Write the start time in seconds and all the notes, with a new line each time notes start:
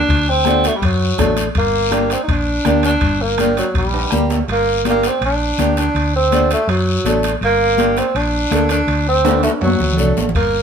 Already playing: D4
0.09 D2, bombo low, high timbale, long guiro
0.29 C4
0.45 A3 D4 F#4, bombo rim, high conga, high timbale, short guiro
0.64 A3, high timbale, short guiro
0.77 G3
0.82 F#2 F#3, bombo low, high conga, high timbale, long guiro
1.18 A1 A3 D4 A4, bombo low, bombo rim, high conga, high timbale, short guiro
1.37 high timbale, short guiro
1.55 G1 A#3, bombo low, high conga, high timbale, long guiro
1.90 A#3 D4 G4, bombo rim, high conga, high timbale, short guiro
2.10 C4, high timbale, short guiro
2.23 D#4
2.28 A#1 D4, bombo low, high conga, high timbale, long guiro
2.65 D2 A#3 D4 G4, bombo rim, high conga, high timbale, short guiro
2.83 D4, high timbale, short guiro
3.01 G1, bombo low, high conga, high timbale, long guiro
3.21 A#3
3.38 A#3 D4 G4, bombo rim, high conga, high timbale, short guiro
3.57 F#3, high timbale, short guiro
3.74 A#1 G3, bombo low, high timbale, long guiro
3.94 high timbale
4.11 D2 A#3 D4 G4, bombo rim, high conga, short guiro
4.30 low timbale, short guiro
4.48 G1 A#3, high conga, high timbale, long guiro
4.85 A#3 D4 G4, high conga, high timbale, short guiro
4.90 A#3
5.03 high timbale, short guiro
5.08 C4
5.21 A#1, high conga, high timbale, long guiro
5.25 D4
5.58 D2 A#3 D4 G4, high conga, high timbale, short guiro
5.77 D4, high timbale, short guiro
5.95 D2, high conga, high timbale, long guiro
6.16 C4
6.31 A3 D4 F#4, high conga, high timbale, short guiro
6.51 A3, high timbale, short guiro
6.67 F#2 F#3, high conga, high timbale, long guiro
7.04 A1 A3 D4 A4, high conga, high timbale, short guiro
7.23 high timbale, short guiro
7.41 G1 A#3, high conga, high timbale, long guiro
7.77 A#3 D4 G4, high conga, high timbale, short guiro
7.97 C4, high timbale, short guiro
8.15 A#1 D4, high conga, high timbale, long guiro
8.51 D2 A#3 D4 A4, high conga, high timbale, low timbale, short guiro
8.69 D4, high timbale, short guiro
8.87 D2, high conga, high timbale, long guiro
9.09 C4
9.25 A3 D4 F#4, high conga, high timbale, short guiro
9.43 A3, high conga, high timbale, short guiro
9.61 F#2 F#3, low timbale, long guiro
9.67 high conga
9.80 D2, low conga
9.92 low conga
9.97 C2 A3 D4 A4, short guiro
10.05 low conga
10.17 A1, low timbale, short guiro
10.29 low conga
10.35 G1 A#3, bombo low, high timbale, long guiro